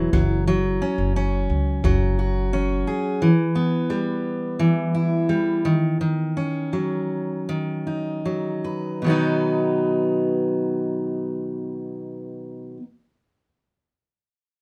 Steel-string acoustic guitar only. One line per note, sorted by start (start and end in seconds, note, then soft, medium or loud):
0.00 0.20 E3 medium
0.00 0.13 F#3 medium
0.00 0.20 B3 medium
0.00 0.20 E4 medium
0.13 0.46 F#3 medium
0.47 1.83 F#3 medium
0.82 1.15 C#4 medium
1.16 2.52 C#4 medium
1.85 3.28 F#3 medium
2.19 3.28 F#4 medium
2.53 3.28 C#4 medium
2.87 3.28 G#4 medium
3.22 4.58 E3 medium
3.55 6.36 B3 medium
3.90 5.28 G3 medium
4.59 5.65 E3 medium
4.94 5.72 E4 medium
5.29 5.72 G3 medium
5.65 6.00 D#3 medium
6.01 7.48 D#3 medium
6.37 9.07 C#4 soft
6.73 8.25 F#3 soft
7.49 9.04 D#3 medium
7.87 9.09 D#4 soft
8.25 9.06 F#3 soft
8.64 9.11 B4 soft
9.02 12.77 B2 medium
9.02 12.79 D#3 medium
9.06 12.81 F#3 medium
9.06 12.83 B3 medium
9.06 12.85 D#4 medium
9.11 12.86 B4 medium